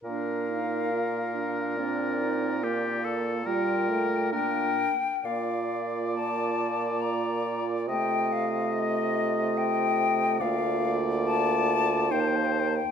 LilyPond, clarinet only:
\new Staff \with { instrumentName = "Clarinet" } { \time 3/4 \key bes \major \tempo 4 = 70 d'8 ees'8 f'8 d'8 d'8 ees'8 | f'4 f'4 d'8 r8 | f'2.~ | f'2. |
f'2 ees'4 | }